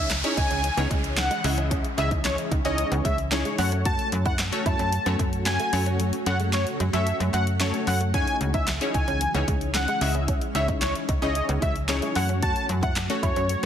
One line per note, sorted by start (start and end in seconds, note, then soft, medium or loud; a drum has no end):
0.00 0.22 C#2 loud
0.00 13.66 C#3 medium
0.00 3.55 E3 medium
0.00 3.55 G#3 medium
0.00 3.55 C#4 medium
0.00 downlifter medium
0.10 muted clean electric guitar stroke soft
0.10 snare loud
0.10 clap medium
0.10 clap loud
0.10 closed hi-hat loud
0.24 0.66 C#4 medium
0.24 0.66 D#4 medium
0.24 0.66 E4 medium
0.24 0.66 G#4 medium
0.24 0.66 C#5 loud
0.24 closed hi-hat medium
0.37 0.47 C#2 medium
0.37 0.47 D#4 medium
0.37 0.88 G#5 medium
0.37 kick medium
0.37 closed hi-hat medium
0.51 0.70 C#2 medium
0.51 0.61 C#4 medium
0.51 closed hi-hat medium
0.64 muted clean electric guitar stroke soft
0.64 closed hi-hat loud
0.77 0.87 C#2 loud
0.77 0.88 B3 medium
0.77 1.30 C#4 medium
0.77 1.30 D#4 medium
0.77 1.30 E4 medium
0.77 1.30 G#4 medium
0.77 1.30 C#5 medium
0.77 closed hi-hat medium
0.91 1.30 C#2 medium
0.91 1.01 G#3 medium
0.91 kick loud
0.91 closed hi-hat medium
1.04 closed hi-hat medium
1.17 1.55 F#5 medium
1.17 snare medium
1.17 clap loud
1.17 clap medium
1.17 closed hi-hat medium
1.31 1.41 G#3 medium
1.31 closed hi-hat medium
1.44 1.83 C#2 loud
1.44 1.86 C#4 medium
1.44 1.87 E4 medium
1.44 1.87 G#4 medium
1.44 1.86 D#5 medium
1.44 1.87 E5 loud
1.44 muted clean electric guitar stroke soft
1.44 open hi-hat medium
1.58 1.68 C#4 medium
1.58 closed hi-hat medium
1.71 1.81 C#4 medium
1.71 kick loud
1.71 closed hi-hat medium
1.85 closed hi-hat medium
1.97 2.37 C#2 loud
1.97 2.50 C#4 medium
1.97 2.51 E4 medium
1.97 2.51 G#4 medium
1.97 2.50 D#5 medium
1.97 2.51 E5 medium
1.97 2.09 E5 medium
1.97 muted clean electric guitar stroke soft
1.97 closed hi-hat medium
2.11 2.22 D#4 medium
2.11 kick loud
2.11 closed hi-hat medium
2.25 2.36 C#5 medium
2.25 muted clean electric guitar stroke soft
2.25 snare medium
2.25 clap medium
2.25 clap loud
2.25 closed hi-hat medium
2.38 closed hi-hat medium
2.51 2.61 C#2 medium
2.51 2.62 D#4 medium
2.51 kick medium
2.51 closed hi-hat medium
2.65 2.84 C#2 medium
2.65 3.17 C#4 medium
2.65 2.75 C#4 medium
2.65 3.17 D#4 medium
2.65 3.18 E4 medium
2.65 3.18 G#4 medium
2.65 3.18 C#5 loud
2.65 2.88 D#5 medium
2.65 closed hi-hat medium
2.78 muted clean electric guitar stroke soft
2.78 closed hi-hat loud
2.92 3.01 C#2 loud
2.92 3.02 B3 medium
2.92 closed hi-hat medium
3.05 3.44 C#2 loud
3.05 3.15 G#3 medium
3.05 3.16 E5 medium
3.05 kick loud
3.05 closed hi-hat medium
3.18 closed hi-hat medium
3.32 3.57 C#4 loud
3.32 3.59 D#4 medium
3.32 3.59 E4 medium
3.32 3.59 G#4 medium
3.32 3.58 C#5 loud
3.32 snare loud
3.32 clap loud
3.32 clap medium
3.32 closed hi-hat medium
3.45 3.56 G#3 medium
3.45 closed hi-hat medium
3.58 3.97 F#2 loud
3.58 8.10 F#3 medium
3.58 4.34 A3 medium
3.58 8.10 A3 medium
3.58 4.34 C#4 medium
3.58 4.34 F#4 medium
3.58 8.10 F#4 medium
3.58 4.34 A4 medium
3.58 4.34 C#5 medium
3.58 3.70 F#5 medium
3.58 muted clean electric guitar stroke medium
3.58 open hi-hat medium
3.72 3.82 C#4 medium
3.72 closed hi-hat medium
3.85 3.96 F#4 medium
3.85 4.08 A5 loud
3.85 kick loud
3.85 closed hi-hat medium
3.99 closed hi-hat medium
4.12 4.51 F#2 loud
4.12 muted clean electric guitar stroke soft
4.12 closed hi-hat medium
4.26 4.36 E4 medium
4.26 4.37 F#5 medium
4.26 kick loud
4.26 closed hi-hat medium
4.39 muted clean electric guitar stroke soft
4.39 snare medium
4.39 clap medium
4.39 clap loud
4.39 closed hi-hat medium
4.52 4.94 A3 medium
4.52 4.94 C#4 medium
4.52 4.95 F#4 medium
4.52 4.95 A4 medium
4.52 4.95 C#5 medium
4.52 closed hi-hat medium
4.66 4.76 F#2 medium
4.66 4.76 E4 medium
4.66 5.16 A5 medium
4.66 kick medium
4.66 closed hi-hat medium
4.79 4.99 F#2 medium
4.79 4.89 C#4 medium
4.79 closed hi-hat medium
4.93 muted clean electric guitar stroke medium
4.93 closed hi-hat medium
5.06 5.16 F#2 loud
5.06 5.59 A3 medium
5.06 5.16 B3 medium
5.06 5.59 C#4 medium
5.06 5.59 F#4 medium
5.06 5.59 A4 medium
5.06 5.59 C#5 medium
5.06 closed hi-hat medium
5.19 5.58 F#2 loud
5.19 5.30 A3 medium
5.19 kick loud
5.19 closed hi-hat medium
5.33 closed hi-hat medium
5.46 5.84 G#5 medium
5.46 snare loud
5.46 clap medium
5.46 clap loud
5.46 closed hi-hat medium
5.60 5.70 A3 medium
5.60 closed hi-hat medium
5.73 6.12 F#2 loud
5.73 6.15 A3 medium
5.73 6.15 C#4 medium
5.73 6.15 F#4 medium
5.73 6.15 A4 medium
5.73 6.15 C#5 medium
5.73 muted clean electric guitar stroke soft
5.73 open hi-hat medium
5.86 5.97 C#4 medium
5.86 closed hi-hat medium
6.00 6.10 F#3 medium
6.00 closed hi-hat loud
6.13 closed hi-hat medium
6.26 6.65 F#2 loud
6.26 6.79 A3 medium
6.26 6.79 C#4 medium
6.26 6.79 F#4 medium
6.26 6.79 A4 medium
6.26 6.79 C#5 medium
6.26 6.38 F#5 medium
6.26 muted clean electric guitar stroke soft
6.26 closed hi-hat medium
6.40 6.50 G#3 medium
6.40 closed hi-hat medium
6.53 6.65 C#5 medium
6.53 snare medium
6.53 clap medium
6.53 clap loud
6.53 closed hi-hat loud
6.67 closed hi-hat medium
6.80 6.90 F#2 medium
6.80 6.90 G#3 medium
6.80 closed hi-hat medium
6.93 7.13 F#2 medium
6.93 7.04 F#3 medium
6.93 7.46 A3 medium
6.93 7.46 C#4 medium
6.93 7.46 F#4 medium
6.93 7.46 A4 medium
6.93 7.46 C#5 loud
6.93 7.16 E5 medium
6.93 closed hi-hat medium
7.07 muted clean electric guitar stroke soft
7.07 closed hi-hat loud
7.20 7.30 F#2 loud
7.20 7.31 G#3 medium
7.20 closed hi-hat medium
7.33 7.72 F#2 medium
7.33 7.44 A3 medium
7.33 7.45 F#5 medium
7.33 clap medium
7.33 closed hi-hat medium
7.47 closed hi-hat medium
7.60 8.02 A3 loud
7.60 8.02 C#4 medium
7.60 8.03 F#4 medium
7.60 8.03 A4 medium
7.60 8.03 C#5 loud
7.60 snare loud
7.60 clap medium
7.60 clap loud
7.60 closed hi-hat medium
7.74 7.84 C#4 medium
7.74 closed hi-hat medium
7.87 8.26 F#2 loud
7.87 7.99 F#5 medium
7.87 muted clean electric guitar stroke soft
7.87 open hi-hat medium
8.01 8.11 A3 medium
8.01 closed hi-hat medium
8.14 12.12 E3 medium
8.14 10.26 G#3 medium
8.14 8.67 C#4 medium
8.14 12.12 C#4 loud
8.14 8.24 C#4 medium
8.14 8.67 D#4 medium
8.14 8.67 E4 medium
8.14 8.67 G#4 medium
8.14 8.67 C#5 medium
8.14 8.37 G#5 loud
8.14 kick loud
8.14 closed hi-hat medium
8.27 closed hi-hat medium
8.41 8.80 C#2 loud
8.41 muted clean electric guitar stroke soft
8.41 closed hi-hat medium
8.54 8.64 D#4 medium
8.54 8.66 E5 medium
8.54 kick loud
8.54 closed hi-hat medium
8.67 muted clean electric guitar stroke soft
8.67 snare medium
8.67 clap medium
8.67 clap loud
8.67 closed hi-hat medium
8.81 9.23 C#4 medium
8.81 9.23 D#4 medium
8.81 9.23 E4 medium
8.81 9.23 G#4 medium
8.81 9.23 C#5 medium
8.81 closed hi-hat medium
8.94 9.04 C#2 medium
8.94 9.05 D#4 medium
8.94 9.45 G#5 medium
8.94 kick medium
8.94 closed hi-hat medium
9.08 9.27 C#2 medium
9.08 9.18 C#4 medium
9.08 closed hi-hat medium
9.21 muted clean electric guitar stroke soft
9.21 closed hi-hat loud
9.34 9.44 C#2 loud
9.34 9.45 B3 medium
9.34 9.87 C#4 medium
9.34 9.87 D#4 medium
9.34 9.87 E4 medium
9.34 9.88 G#4 medium
9.34 9.88 C#5 medium
9.34 closed hi-hat medium
9.48 9.87 C#2 medium
9.48 9.58 G#3 medium
9.48 kick loud
9.48 closed hi-hat medium
9.61 closed hi-hat medium
9.74 10.12 F#5 medium
9.74 snare loud
9.74 clap loud
9.74 clap medium
9.74 closed hi-hat medium
9.88 9.98 G#3 medium
9.88 closed hi-hat medium
10.01 10.40 C#2 loud
10.01 10.44 C#4 medium
10.01 10.44 E4 medium
10.01 10.44 G#4 medium
10.01 10.44 D#5 medium
10.01 10.44 E5 medium
10.01 muted clean electric guitar stroke medium
10.01 open hi-hat medium
10.15 10.25 C#4 medium
10.15 closed hi-hat medium
10.28 13.66 F#3 medium
10.28 10.39 C#4 medium
10.28 kick loud
10.28 closed hi-hat loud
10.41 closed hi-hat medium
10.55 10.94 C#2 loud
10.55 11.08 C#4 medium
10.55 11.08 D#4 medium
10.55 11.08 E4 medium
10.55 11.08 G#4 medium
10.55 11.08 C#5 medium
10.55 10.66 E5 medium
10.55 muted clean electric guitar stroke soft
10.55 closed hi-hat medium
10.68 10.79 D#4 medium
10.68 kick loud
10.68 closed hi-hat medium
10.82 10.93 C#5 medium
10.82 muted clean electric guitar stroke soft
10.82 snare medium
10.82 clap loud
10.82 closed hi-hat loud
10.96 closed hi-hat medium
11.09 11.18 C#2 medium
11.09 11.19 D#4 medium
11.09 kick medium
11.09 closed hi-hat medium
11.22 11.42 C#2 medium
11.22 11.75 C#4 medium
11.22 11.32 C#4 medium
11.22 11.75 D#4 medium
11.22 11.75 E4 medium
11.22 11.75 G#4 medium
11.22 11.75 C#5 loud
11.22 11.45 D#5 medium
11.22 closed hi-hat medium
11.35 muted clean electric guitar stroke soft
11.35 closed hi-hat loud
11.49 11.59 C#2 loud
11.49 11.59 B3 medium
11.49 closed hi-hat medium
11.62 11.73 G#3 medium
11.62 11.74 E5 medium
11.62 kick loud
11.62 closed hi-hat medium
11.76 closed hi-hat medium
11.89 12.15 C#4 loud
11.89 12.16 D#4 medium
11.89 12.16 E4 medium
11.89 12.16 G#4 medium
11.89 12.15 C#5 loud
11.89 snare loud
11.89 clap loud
11.89 clap medium
11.89 closed hi-hat medium
12.02 12.13 G#3 medium
12.02 closed hi-hat medium
12.15 12.55 F#2 loud
12.15 13.66 A3 medium
12.15 12.91 A3 medium
12.15 12.91 C#4 medium
12.15 13.66 F#4 medium
12.15 12.91 F#4 medium
12.15 12.91 A4 medium
12.15 12.91 C#5 loud
12.15 12.27 F#5 medium
12.15 muted clean electric guitar stroke soft
12.15 open hi-hat medium
12.29 12.39 C#4 medium
12.29 closed hi-hat medium
12.42 12.53 F#4 medium
12.42 12.65 A5 loud
12.42 kick loud
12.42 closed hi-hat loud
12.56 closed hi-hat medium
12.69 13.08 F#2 loud
12.69 muted clean electric guitar stroke soft
12.69 closed hi-hat medium
12.83 12.93 E4 medium
12.83 12.94 F#5 medium
12.83 kick loud
12.83 closed hi-hat medium
12.96 muted clean electric guitar stroke soft
12.96 snare medium
12.96 clap medium
12.96 clap loud
12.96 closed hi-hat loud
13.10 13.52 A3 medium
13.10 13.52 C#4 medium
13.10 13.52 F#4 medium
13.10 13.52 A4 medium
13.10 13.52 C#5 loud
13.10 closed hi-hat medium
13.23 13.33 F#2 medium
13.23 13.33 E4 medium
13.23 13.66 C#5 medium
13.23 kick medium
13.23 closed hi-hat medium
13.36 13.56 F#2 medium
13.36 13.47 C#4 medium
13.36 closed hi-hat medium
13.49 muted clean electric guitar stroke soft
13.49 closed hi-hat loud